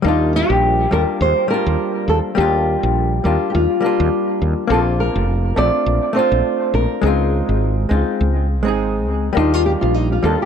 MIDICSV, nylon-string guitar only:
0, 0, Header, 1, 2, 480
1, 0, Start_track
1, 0, Key_signature, -3, "major"
1, 0, Tempo, 582524
1, 35, Time_signature, 4, 2, 24, 8
1, 8612, End_track
2, 0, Start_track
2, 0, Title_t, "Nylon-string guitar"
2, 0, Program_c, 0, 24
2, 49, Note_on_c, 0, 63, 96
2, 290, Note_off_c, 0, 63, 0
2, 296, Note_on_c, 0, 67, 110
2, 733, Note_off_c, 0, 67, 0
2, 766, Note_on_c, 0, 70, 101
2, 830, Note_off_c, 0, 70, 0
2, 1005, Note_on_c, 0, 72, 110
2, 1237, Note_off_c, 0, 72, 0
2, 1240, Note_on_c, 0, 70, 113
2, 1722, Note_off_c, 0, 70, 0
2, 1725, Note_on_c, 0, 69, 101
2, 1789, Note_off_c, 0, 69, 0
2, 1956, Note_on_c, 0, 67, 104
2, 2873, Note_off_c, 0, 67, 0
2, 2883, Note_on_c, 0, 67, 65
2, 2922, Note_off_c, 0, 67, 0
2, 2926, Note_on_c, 0, 65, 88
2, 3608, Note_off_c, 0, 65, 0
2, 3883, Note_on_c, 0, 69, 99
2, 3947, Note_off_c, 0, 69, 0
2, 4121, Note_on_c, 0, 70, 101
2, 4597, Note_off_c, 0, 70, 0
2, 4600, Note_on_c, 0, 74, 115
2, 5072, Note_off_c, 0, 74, 0
2, 5075, Note_on_c, 0, 72, 105
2, 5522, Note_off_c, 0, 72, 0
2, 5559, Note_on_c, 0, 70, 95
2, 5781, Note_off_c, 0, 70, 0
2, 5797, Note_on_c, 0, 68, 84
2, 6723, Note_off_c, 0, 68, 0
2, 7725, Note_on_c, 0, 63, 88
2, 7858, Note_off_c, 0, 63, 0
2, 7858, Note_on_c, 0, 65, 87
2, 7955, Note_off_c, 0, 65, 0
2, 7958, Note_on_c, 0, 67, 102
2, 7999, Note_off_c, 0, 67, 0
2, 8085, Note_on_c, 0, 65, 88
2, 8193, Note_off_c, 0, 65, 0
2, 8193, Note_on_c, 0, 63, 89
2, 8331, Note_off_c, 0, 63, 0
2, 8341, Note_on_c, 0, 65, 86
2, 8443, Note_off_c, 0, 65, 0
2, 8445, Note_on_c, 0, 69, 97
2, 8581, Note_off_c, 0, 69, 0
2, 8612, End_track
0, 0, End_of_file